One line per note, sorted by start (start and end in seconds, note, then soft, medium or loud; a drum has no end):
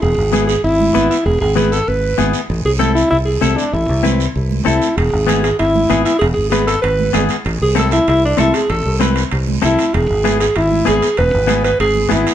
0.02 0.15 E1 loud
0.02 0.45 G#4 medium
0.02 long guiro medium
0.18 0.55 G#1 medium
0.33 0.54 B3 medium
0.33 0.55 E4 medium
0.33 0.55 G#4 medium
0.33 high conga medium
0.33 short guiro medium
0.47 0.62 G#4 medium
0.47 short guiro medium
0.64 0.89 G#1 medium
0.64 1.07 E4 medium
0.64 long guiro medium
0.80 high conga medium
0.94 1.07 G#1 medium
0.94 1.16 B3 medium
0.94 1.16 E4 medium
0.94 1.16 B4 medium
0.94 high conga medium
0.94 short guiro medium
1.10 1.24 E4 medium
1.10 short guiro medium
1.26 1.38 E1 loud
1.26 1.40 G#4 medium
1.26 long guiro medium
1.41 1.79 G#1 medium
1.41 1.55 G#4 loud
1.56 1.78 B3 medium
1.56 1.78 E4 medium
1.56 1.74 G#4 medium
1.56 1.78 B4 medium
1.56 high conga medium
1.56 short guiro medium
1.72 1.90 A4 medium
1.72 short guiro medium
1.88 2.13 G#1 medium
1.88 2.34 B4 medium
1.88 long guiro medium
2.18 2.31 G#1 medium
2.18 2.40 B3 medium
2.18 2.40 E4 medium
2.18 2.40 G#4 medium
2.18 high conga medium
2.18 short guiro medium
2.33 short guiro medium
2.50 2.62 A1 loud
2.50 long guiro medium
2.65 3.02 C2 medium
2.65 2.72 G#4 loud
2.79 3.02 C4 medium
2.79 3.02 E4 medium
2.79 2.94 A4 medium
2.79 3.02 A4 medium
2.79 high conga medium
2.79 short guiro medium
2.95 3.10 E4 medium
2.95 short guiro medium
3.10 3.36 C2 medium
3.10 3.18 E4 loud
3.10 long guiro medium
3.26 3.43 G#4 medium
3.41 3.55 C2 medium
3.41 3.63 C4 medium
3.41 3.64 E4 medium
3.41 3.58 A4 medium
3.41 3.64 A4 medium
3.41 high conga medium
3.41 short guiro medium
3.56 3.75 D4 medium
3.56 short guiro medium
3.73 3.86 A1 loud
3.73 4.04 E4 medium
3.73 long guiro medium
3.89 4.26 C2 medium
4.03 4.25 C4 medium
4.03 4.25 E4 medium
4.03 4.26 B4 medium
4.03 high conga medium
4.03 short guiro medium
4.20 short guiro medium
4.36 4.60 C2 medium
4.36 long guiro medium
4.51 high conga medium
4.65 4.79 C2 medium
4.65 4.87 C4 medium
4.65 4.98 E4 medium
4.65 4.88 E4 medium
4.65 4.88 A4 medium
4.65 high conga medium
4.65 short guiro medium
4.82 short guiro medium
4.97 5.10 E1 loud
4.97 5.42 G#4 medium
4.97 high timbale medium
4.97 long guiro medium
5.13 5.50 G#1 medium
5.27 5.49 B3 medium
5.27 5.49 E4 medium
5.27 5.50 G#4 medium
5.27 high conga medium
5.27 high timbale medium
5.27 short guiro medium
5.43 5.58 G#4 medium
5.43 high timbale medium
5.43 short guiro medium
5.59 5.84 G#1 medium
5.59 6.02 E4 medium
5.59 high timbale medium
5.59 long guiro medium
5.75 high conga medium
5.90 6.03 G#1 medium
5.90 6.12 B3 medium
5.90 6.12 E4 medium
5.90 6.12 G#4 medium
5.90 high conga medium
5.90 high timbale medium
5.90 short guiro medium
6.05 6.18 E4 medium
6.05 high timbale medium
6.05 short guiro medium
6.19 6.34 E1 loud
6.19 6.26 G#4 loud
6.19 high timbale medium
6.19 long guiro medium
6.34 6.74 G#1 medium
6.34 6.49 G#4 medium
6.50 6.74 B3 medium
6.50 6.74 E4 medium
6.50 6.65 G#4 medium
6.50 6.74 B4 medium
6.50 high conga medium
6.50 high timbale medium
6.50 short guiro medium
6.67 6.81 A4 loud
6.67 high timbale medium
6.67 short guiro medium
6.82 7.08 G#1 medium
6.82 7.26 B4 loud
6.82 high timbale medium
6.82 long guiro medium
6.99 high conga medium
7.13 7.27 G#1 medium
7.13 7.35 B3 medium
7.13 7.36 E4 medium
7.13 7.36 G#4 medium
7.13 high conga medium
7.13 high timbale medium
7.13 low timbale medium
7.13 short guiro medium
7.29 high timbale medium
7.29 short guiro medium
7.45 7.58 A1 loud
7.45 high timbale medium
7.45 long guiro medium
7.62 7.98 C2 medium
7.62 7.76 G#4 loud
7.75 7.97 C4 medium
7.75 7.98 E4 medium
7.75 7.98 A4 medium
7.75 high conga medium
7.75 high timbale medium
7.75 short guiro medium
7.79 7.92 A4 medium
7.91 8.07 E4 medium
7.91 high timbale medium
7.91 short guiro medium
8.07 8.33 C2 medium
8.07 8.23 E4 loud
8.07 high timbale medium
8.07 long guiro medium
8.25 8.39 D4 medium
8.37 8.51 C2 medium
8.37 8.60 C4 medium
8.37 8.60 E4 medium
8.37 8.56 E4 medium
8.37 8.60 A4 medium
8.37 high conga medium
8.37 high timbale medium
8.37 short guiro medium
8.54 8.71 G#4 medium
8.54 high timbale medium
8.54 short guiro medium
8.70 8.82 A1 loud
8.70 9.01 A4 medium
8.70 high timbale medium
8.70 long guiro medium
8.86 9.23 C2 medium
9.00 9.22 C4 medium
9.00 9.22 E4 medium
9.00 9.22 B4 medium
9.00 high conga medium
9.00 high timbale medium
9.00 short guiro medium
9.16 high timbale medium
9.16 short guiro medium
9.31 9.57 C2 medium
9.31 high timbale medium
9.31 long guiro medium
9.48 high conga medium
9.62 9.76 C2 medium
9.62 9.84 C4 medium
9.62 9.84 E4 medium
9.62 9.96 E4 medium
9.62 9.84 A4 medium
9.62 high conga medium
9.62 high timbale medium
9.62 short guiro medium
9.79 high timbale medium
9.79 short guiro medium
9.94 10.06 E1 loud
9.94 10.40 G#4 loud
9.94 high timbale medium
9.94 long guiro medium
10.10 10.47 G#1 medium
10.24 10.46 B3 medium
10.24 10.46 E4 medium
10.24 10.46 G#4 medium
10.24 high conga medium
10.24 high timbale medium
10.24 short guiro medium
10.40 10.58 G#4 medium
10.40 high timbale medium
10.40 short guiro medium
10.56 10.81 G#1 medium
10.56 10.87 E4 medium
10.56 high timbale medium
10.56 long guiro medium
10.71 high conga medium
10.85 11.00 G#1 medium
10.85 11.08 B3 medium
10.85 11.08 E4 medium
10.85 11.08 G#4 medium
10.85 11.16 G#4 medium
10.85 high conga medium
10.85 high timbale medium
10.85 low timbale medium
10.85 short guiro medium
11.02 high timbale medium
11.02 short guiro medium
11.17 11.31 E1 loud
11.17 11.61 B4 loud
11.17 high timbale medium
11.17 long guiro medium
11.34 11.71 G#1 medium
11.47 11.70 B3 medium
11.47 11.70 E4 medium
11.47 11.70 G#4 medium
11.47 high conga medium
11.47 high timbale medium
11.47 short guiro medium
11.64 11.79 B4 loud
11.64 high timbale medium
11.64 short guiro medium
11.80 12.05 G#1 medium
11.80 12.09 G#4 loud
11.80 high timbale medium
11.80 long guiro medium
11.95 high conga medium
12.09 12.24 G#1 medium
12.09 12.32 B3 medium
12.09 12.32 E4 medium
12.09 12.34 E4 medium
12.09 12.32 G#4 medium
12.09 high conga medium
12.09 high timbale medium
12.09 short guiro medium
12.27 high timbale medium
12.27 short guiro medium